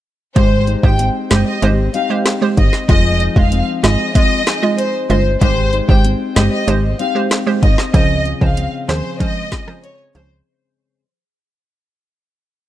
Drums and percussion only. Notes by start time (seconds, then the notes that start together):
0.36 kick, closed hi-hat
0.67 closed hi-hat
0.83 kick
0.99 closed hi-hat
1.31 snare, closed hi-hat
1.62 closed hi-hat
1.94 closed hi-hat
2.26 snare, closed hi-hat
2.57 kick, closed hi-hat
2.73 snare
2.89 kick, closed hi-hat
3.20 closed hi-hat
3.36 kick
3.52 closed hi-hat
3.84 snare, closed hi-hat
4.15 kick, closed hi-hat
4.47 snare, closed hi-hat
4.79 closed hi-hat
5.10 closed hi-hat
5.41 kick, closed hi-hat
5.73 closed hi-hat
5.89 kick
6.05 closed hi-hat
6.36 snare, closed hi-hat
6.68 closed hi-hat
6.99 closed hi-hat
7.31 snare, closed hi-hat
7.63 kick, closed hi-hat
7.78 snare
7.94 kick, closed hi-hat
8.25 closed hi-hat
8.41 kick
8.57 closed hi-hat
8.89 snare, closed hi-hat
9.20 kick, closed hi-hat
9.52 kick, snare, closed hi-hat
9.68 cross-stick
9.84 closed hi-hat
10.15 closed hi-hat